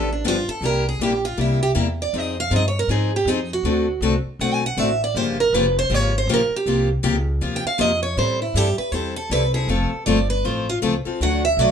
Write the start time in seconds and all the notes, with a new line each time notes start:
Already playing: A1
0.13 D4
0.24 G1 D3 F3 B3 D4 F4 G4
0.48 A4, muted upright bass stroke
0.61 C2 C3 G3 A#3 E4 G4
0.65 A#4
0.89 G#4
0.99 A#1 C3 G3 A#3 E4 G4
1.25 F4
1.37 C2 C3 G3 A#3 E4 G4
1.63 G4
1.75 E2 C3 G3 A#3 E4 G4
2.02 D5
2.13 F2 F3 C4 D#4 G#4
2.18 D#5
2.40 F5
2.51 G2 F3 C4 D#4 G#4
2.56 D#5
2.68 C#5
2.79 A#4
2.88 G#2 F3 C4 D#4 G#4
3.16 G4
3.25 F2 F3 C4 D#4 G#4
3.53 F#4
3.63 D2 D3 A3 C4 F#4 A4
4.01 C2 D3 A3 C4 F#4 A4
4.39 B1 D3 A3 C4 F#4 A4 F#5
4.54 G#5
4.66 F#5
4.77 A1 D3 A3 C4 F#4 A4 E5
5.04 D5
5.15 G1 C#3 F3 A#3 F4 G4 C5
5.40 A#4
5.53 F1 C#3 F3 A#3 F4 G4 B4
5.79 C5
5.90 G#1 C#3 F3 A#3 F4 G4
5.94 C#5
6.18 C5
6.27 A#1 C#3 F3 A#3 F4 G4
6.34 A#4
6.50 muted upright bass stroke
6.56 G4
6.66 C2 C3 F3 A#3 F4 G4
7.03 C#2 C3 F3 A#3 F4 G4
7.41 D#2 C3 F3 A#3 F4 G4
7.56 G5
7.65 F5, muted upright bass stroke
7.78 F2 C3 F3 A#3 F4 G4 D#5
8.03 C#5
8.17 A2 E3 G3 C4 E4 A4 C5
8.42 E4
8.54 G2 E3 G3 C4 E4 G4 A4
8.78 B4, muted upright bass stroke
8.92 E2 E3 G3 C4 E4 A4 C5
9.16 A4
9.30 C2 E3 G3 C4 E4 A4 B4
9.54 C4 E4 G#4 A4
9.67 F1 F3 A3 C4 F4 A4
9.92 muted upright bass stroke
10.06 G1 F3 A3 C4 F4 A4 D5
10.30 B4
10.44 A1 F3 A3 C4 F4 A4 C5
10.69 F4
10.82 C#2 F3 A3 C4 F4 A4
11.05 C4 F4 A4, muted upright bass stroke
11.20 D2 D3 F#3 A3 D4 F#4 F#5
11.45 E5
11.57 B1 D3 F#3 A3 D4 F#4 D5